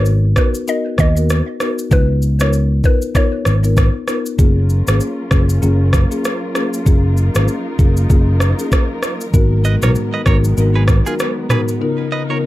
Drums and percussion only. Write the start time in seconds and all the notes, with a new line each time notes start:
0.06 shaker
0.36 kick, cross-stick, shaker
0.55 shaker
0.68 shaker
0.98 kick, cross-stick, shaker
1.17 shaker
1.30 cross-stick, shaker
1.60 cross-stick, shaker
1.79 shaker
1.91 kick, shaker
2.22 shaker
2.40 cross-stick, shaker
2.53 shaker
2.84 kick, shaker
3.02 shaker
3.15 kick, cross-stick, shaker
3.45 cross-stick, shaker
3.64 shaker
3.77 kick, cross-stick, shaker
4.08 cross-stick, shaker
4.26 shaker
4.39 kick, shaker
4.70 shaker
4.87 cross-stick, shaker
5.00 shaker
5.31 kick, cross-stick, shaker
5.49 shaker
5.63 shaker
5.93 kick, cross-stick, shaker
6.12 shaker
6.25 cross-stick, shaker
6.55 cross-stick, shaker
6.74 shaker
6.86 kick, shaker
7.17 shaker
7.35 cross-stick, shaker
7.48 shaker
7.79 kick, shaker
7.97 shaker
8.10 kick, shaker
8.40 cross-stick, shaker
8.59 shaker
8.72 kick, cross-stick, shaker
9.03 cross-stick, shaker
9.21 shaker
9.34 kick, shaker
9.65 shaker
9.82 cross-stick, mid tom, shaker
9.95 shaker
10.26 kick, cross-stick, shaker
10.44 shaker
10.57 shaker
10.88 kick, cross-stick, shaker
11.06 shaker
11.19 cross-stick, shaker
11.50 cross-stick, mid tom, shaker
11.68 shaker